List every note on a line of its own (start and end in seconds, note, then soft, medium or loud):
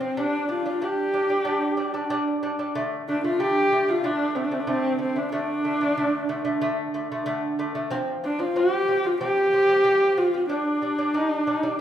0.00 0.14 F3 medium
0.00 0.20 C4 medium
0.00 0.14 C4 medium
0.17 0.43 G3 medium
0.17 0.43 D4 medium
0.17 0.50 D4 medium
0.49 0.62 G3 medium
0.49 0.62 D4 medium
0.49 0.85 F4 medium
0.66 0.79 G3 medium
0.66 0.78 D4 medium
0.81 1.07 G3 medium
0.81 1.07 D4 medium
0.81 2.11 G4 medium
1.13 1.26 G3 medium
1.13 1.27 D4 medium
1.29 1.42 G3 medium
1.29 1.42 D4 medium
1.45 1.71 G3 medium
1.45 1.71 D4 medium
1.77 1.91 G3 medium
1.77 1.90 D4 medium
1.94 2.07 G3 medium
1.94 2.07 D4 medium
2.10 2.36 G3 loud
2.10 2.36 D4 loud
2.43 2.55 G3 medium
2.43 2.55 D4 medium
2.59 2.72 G3 medium
2.59 2.72 D4 medium
2.75 3.01 D3 medium
2.75 3.01 A3 loud
3.08 3.20 D3 medium
3.08 3.20 A3 medium
3.08 3.22 D4 medium
3.24 3.36 D3 medium
3.24 3.36 A3 medium
3.24 3.41 F4 medium
3.39 3.65 D3 medium
3.39 3.65 A3 medium
3.39 3.91 G4 medium
3.72 3.84 D3 medium
3.72 3.85 A3 medium
3.88 4.01 D3 medium
3.88 4.01 A3 medium
3.88 4.07 F4 medium
4.04 4.29 D3 medium
4.04 4.30 A3 medium
4.04 4.36 D4 medium
4.35 4.48 D3 medium
4.35 4.48 A3 medium
4.35 4.45 C4 medium
4.44 4.54 D4 medium
4.51 4.64 D3 medium
4.51 4.65 A3 medium
4.51 4.61 C4 medium
4.60 4.70 D4 medium
4.67 4.93 D3 medium
4.67 4.93 A3 medium
4.67 5.00 C4 medium
4.98 5.12 D3 medium
4.98 5.12 A3 medium
4.98 5.19 C4 medium
5.16 5.29 D3 medium
5.16 5.29 A3 medium
5.16 5.32 D4 medium
5.32 5.58 D3 medium
5.32 5.58 A3 medium
5.32 6.57 D4 medium
5.64 5.77 D3 medium
5.64 5.78 A3 medium
5.81 5.94 D3 medium
5.81 5.94 A3 medium
5.97 6.23 D3 medium
5.97 6.23 A3 medium
6.29 6.42 D3 medium
6.29 6.42 A3 medium
6.45 6.58 D3 medium
6.45 6.58 A3 medium
6.61 6.87 D3 medium
6.61 6.87 A3 loud
6.94 7.07 D3 medium
6.94 7.07 A3 medium
7.12 7.24 D3 medium
7.12 7.24 A3 medium
7.26 7.52 D3 medium
7.26 7.52 A3 loud
7.59 7.71 D3 medium
7.59 7.72 A3 medium
7.75 7.88 D3 medium
7.75 7.88 A3 medium
7.91 8.16 F3 loud
7.91 8.17 C4 loud
8.24 8.36 F3 medium
8.24 8.36 C4 medium
8.24 8.41 D4 medium
8.39 8.52 F3 medium
8.39 8.52 C4 medium
8.39 8.58 F4 medium
8.56 8.81 F3 medium
8.56 8.81 C4 medium
8.56 9.07 G4 medium
8.88 9.01 F3 medium
8.88 9.01 C4 medium
9.04 9.17 F3 medium
9.04 9.17 C4 medium
9.04 9.20 F4 medium
9.21 9.46 F3 medium
9.21 9.46 C4 medium
9.21 10.19 G4 loud
9.53 9.65 F3 medium
9.53 9.66 C4 medium
9.69 9.81 F3 medium
9.69 9.81 C4 medium
9.84 10.10 F3 medium
9.84 10.10 C4 medium
10.17 10.30 F3 medium
10.17 10.30 C4 medium
10.17 10.49 F4 medium
10.34 10.46 F3 medium
10.34 10.46 C4 medium
10.49 10.75 G3 medium
10.49 11.16 D4 medium
10.49 10.75 D4 medium
10.82 10.94 G3 medium
10.82 10.95 D4 medium
10.98 11.11 G3 medium
10.98 11.11 D4 medium
11.14 11.40 G3 medium
11.14 11.40 D4 medium
11.14 11.35 D#4 medium
11.35 11.54 D4 medium
11.47 11.59 G3 medium
11.47 11.59 D4 medium
11.54 11.73 D#4 medium
11.63 11.76 G3 medium
11.63 11.76 D4 medium
11.73 11.81 D4 medium